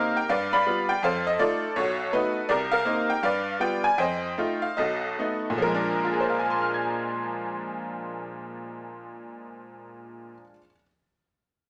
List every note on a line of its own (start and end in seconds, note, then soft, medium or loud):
0.00 0.18 A#3 medium
0.00 0.18 C4 medium
0.00 0.18 D#4 medium
0.00 0.27 G4 medium
0.00 0.27 A#4 medium
0.00 0.14 F5 loud
0.17 0.30 G5 medium
0.29 0.61 G2 medium
0.29 0.99 B4 medium
0.29 0.52 D5 medium
0.29 0.52 F5 loud
0.53 1.00 D5 medium
0.53 1.00 F5 medium
0.53 0.87 B5 loud
0.67 0.91 G3 medium
0.67 0.91 B3 soft
0.67 0.91 F4 soft
0.89 1.03 G5 loud
1.03 1.34 F2 medium
1.03 1.40 A4 medium
1.03 1.73 C5 medium
1.03 1.25 F5 medium
1.27 1.39 D#5 medium
1.39 1.64 A3 medium
1.39 1.64 D#4 soft
1.39 1.64 F4 medium
1.39 1.75 A4 medium
1.39 1.73 D5 medium
1.76 2.08 B1 medium
1.76 2.13 F#4 medium
1.76 2.46 A4 medium
1.76 2.14 C#5 medium
2.13 2.37 A3 soft
2.13 2.38 B3 soft
2.13 2.38 D#4 medium
2.13 2.48 F#4 medium
2.13 2.47 B4 medium
2.49 2.81 C2 medium
2.49 3.20 G4 medium
2.49 2.72 A#4 medium
2.49 2.54 D5 medium
2.71 3.20 A#4 medium
2.71 3.10 F5 loud
2.85 3.11 A#3 medium
2.85 3.11 C4 medium
2.85 3.11 D#4 medium
3.10 3.24 G5 medium
3.23 3.55 G2 medium
3.23 3.96 B4 medium
3.23 3.96 D5 medium
3.23 3.58 F5 medium
3.60 3.86 G3 medium
3.60 3.86 B3 soft
3.60 3.86 F4 medium
3.60 3.83 G5 medium
3.84 3.99 G#5 loud
3.98 4.32 F2 medium
3.98 4.74 C5 medium
3.98 4.74 D#5 medium
3.98 4.59 G5 medium
4.38 4.64 A3 medium
4.38 4.65 D#4 soft
4.38 4.65 F4 medium
4.62 4.78 F5 medium
4.77 5.13 B1 medium
4.77 5.58 F#4 medium
4.77 5.58 A4 medium
4.77 5.41 D#5 medium
5.19 5.47 A3 soft
5.19 5.47 B3 soft
5.19 5.48 D#4 medium
5.50 10.33 A#2 medium
5.58 10.41 F3 medium
5.62 10.41 A#4 medium
5.66 10.49 G#3 medium
5.75 10.58 D4 medium
6.05 10.52 F4 soft
6.12 10.56 G#4 soft
6.20 10.60 C5 soft
6.30 10.65 F5 soft
6.40 10.70 G#5 soft
6.50 10.75 C6 soft
6.62 10.81 F6 soft
6.74 10.87 G#6 soft